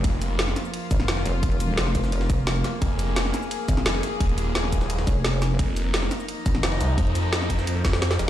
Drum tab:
RD |x-x-x-x-x-xxx-x-|xxx-x-x-x-x-xxx-|x-x-x-x-x-xxx-x-|xxx-x-x-x-x-xxx-|
HH |x-x-x-x-x-x-x-x-|x-x-x-x-x-x-x-x-|x-x-x-x-x-x-x-x-|x-x-x-x-x-x-x-x-|
SH |--x---xx--x---x-|--x---xx--x---x-|--x---xx--x---x-|--x---xx--x---x-|
SD |----ooo----oooo-|----oo-o-o--o-o-|----ooo----oooo-|----oo-o-o--o-o-|
BD |o---------o-----|o-----o---o-----|o---------o-----|o-----o---o-----|

RD |x-x-x-x-x-xxx-x-|xxx-x-x-x-xxxxx-|
HH |x-x-x-x-x-x-x-x-|x-x-x-x-x-x-x-x-|
SH |--x---xx--x---x-|--x---xx--x--xx-|
SD |----ooo----oooo-|----oo-o--ooooo-|
BD |o---------o-----|o-----o---o-----|